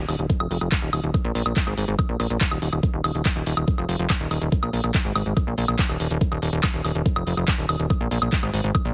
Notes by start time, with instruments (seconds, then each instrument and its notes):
0.08 analog synth bass D#1, open hi-hat, high woodblock
0.19 analog synth bass D#1, closed hi-hat
0.30 kick, closed hi-hat
0.40 analog synth bass F1, high woodblock
0.51 analog synth bass F1, open hi-hat
0.61 analog synth bass F1, closed hi-hat, high woodblock
0.72 kick, clap, closed hi-hat
0.82 analog synth bass D#1
0.93 analog synth bass D#1, open hi-hat, high woodblock
1.04 analog synth bass D#1, closed hi-hat
1.14 kick, closed hi-hat, high woodblock
1.25 analog synth bass A#1
1.35 analog synth bass A#1, open hi-hat
1.46 analog synth bass A#1, closed hi-hat, high woodblock
1.56 kick, clap, closed hi-hat
1.67 analog synth bass G#1, high woodblock
1.77 analog synth bass G#1, open hi-hat
1.88 analog synth bass G#1, closed hi-hat
1.99 kick, closed hi-hat, high woodblock
2.09 analog synth bass A#1
2.20 analog synth bass A#1, open hi-hat, high woodblock
2.30 analog synth bass A#1, closed hi-hat
2.41 kick, clap, closed hi-hat
2.51 analog synth bass D#1, high woodblock
2.62 analog synth bass D#1, open hi-hat
2.73 analog synth bass D#1, closed hi-hat, high woodblock
2.83 kick, closed hi-hat
2.94 analog synth bass D#1
3.04 analog synth bass D#1, open hi-hat, high woodblock
3.15 analog synth bass D#1, closed hi-hat
3.25 kick, clap, closed hi-hat, high woodblock
3.36 analog synth bass D#1
3.46 analog synth bass D#1, open hi-hat
3.57 analog synth bass D#1, closed hi-hat, high woodblock
3.68 kick, closed hi-hat
3.78 analog synth bass F1, high woodblock
3.89 analog synth bass F1, open hi-hat
3.99 analog synth bass F1, closed hi-hat
4.10 kick, clap, closed hi-hat, high woodblock
4.20 analog synth bass D#1
4.31 analog synth bass D#1, open hi-hat, high woodblock
4.42 analog synth bass D#1, closed hi-hat
4.52 kick, closed hi-hat
4.63 analog synth bass A#1, high woodblock
4.73 analog synth bass A#1, open hi-hat
4.84 analog synth bass A#1, closed hi-hat, high woodblock
4.94 kick, clap, closed hi-hat
5.05 analog synth bass G#1
5.15 analog synth bass G#1, open hi-hat, high woodblock
5.26 analog synth bass G#1, closed hi-hat
5.37 kick, closed hi-hat, high woodblock
5.47 analog synth bass A#1
5.58 analog synth bass A#1, open hi-hat
5.68 analog synth bass A#1, closed hi-hat, high woodblock
5.79 kick, clap, closed hi-hat
5.89 analog synth bass D#1, high woodblock
6.00 analog synth bass D#1, open hi-hat
6.11 analog synth bass D#1, closed hi-hat
6.21 kick, closed hi-hat
6.32 analog synth bass D#1, high woodblock
6.42 analog synth bass D#1, open hi-hat
6.53 analog synth bass D#1, closed hi-hat
6.63 kick, clap, closed hi-hat, high woodblock
6.74 analog synth bass D#1
6.84 analog synth bass D#1, open hi-hat, high woodblock
6.95 analog synth bass D#1, closed hi-hat
7.06 kick, closed hi-hat
7.16 analog synth bass F1, high woodblock
7.27 analog synth bass F1, open hi-hat
7.37 analog synth bass F1, closed hi-hat, high woodblock
7.48 kick, clap, closed hi-hat
7.58 analog synth bass D#1
7.69 analog synth bass D#1, open hi-hat, high woodblock
7.80 analog synth bass D#1, closed hi-hat
7.90 kick, closed hi-hat, high woodblock
8.01 analog synth bass A#1
8.11 analog synth bass A#1, open hi-hat
8.22 analog synth bass A#1, closed hi-hat, high woodblock
8.32 kick, clap, closed hi-hat
8.43 analog synth bass G#1, high woodblock
8.54 analog synth bass G#1, open hi-hat
8.64 analog synth bass G#1, closed hi-hat
8.75 kick, closed hi-hat, high woodblock
8.85 analog synth bass A#1